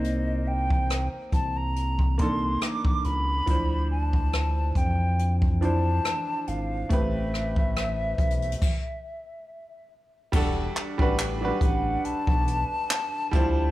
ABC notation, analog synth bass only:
X:1
M:4/4
L:1/16
Q:"Swing 16ths" 1/4=70
K:Ephr
V:1 name="Analog synth bass" clef=bass
C,,6 C,,6 z2 ^C,,2 | D,,6 F,,6 z2 ^G,,,2 | A,,,6 B,,,2 z8 | E,,,2 z A,,,3 A,,,2 B,,, B,,,2 z3 D,,2 |]